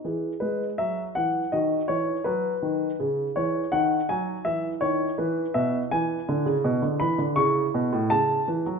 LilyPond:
<<
  \new Staff \with { instrumentName = "Grand piano" } { \time 2/4 \key e \major \tempo 4 = 82 << { r8 b'8 e''8 fis''8 | dis''8 cis''8 b'4 | r8 cis''8 fis''8 gis''8 | e''8 cis''8 b'8 e''8 |
\key a \major gis''4. b''8 | cis'''4 a''8 r8 | } \\ { gis'4 r4 | fis'2 | gis'4 r4 | e'2 |
e'2 | e'2 | } >> }
  \new Staff \with { instrumentName = "Grand piano" } { \clef bass \time 2/4 \key e \major e8 gis8 fis8 e8 | dis8 e8 fis8 dis8 | cis8 e8 dis8 fis8 | e8 dis8 e8 b,8 |
\key a \major e8 d16 cis16 b,16 d16 e16 d16 | cis8 b,16 a,16 cis8 e16 fis16 | }
>>